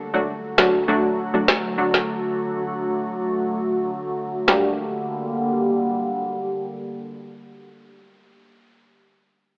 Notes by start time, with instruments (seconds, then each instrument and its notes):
Already playing: ambient pad D3 F#3 A3 F#4
0.14 synth stab F#3 A3 D4 F#4
0.58 synth stab F#3 A3 D4 F#4, snare
0.88 synth stab F#3 A3 D4 F#4
1.34 synth stab F#3 A3 D4 F#4
1.48 snare
1.78 synth stab F#3 A3 D4 F#4
1.94 snare
4.48 ambient pad D3 G3 A#3 G4, synth stab G3 A#3 D4 G4, snare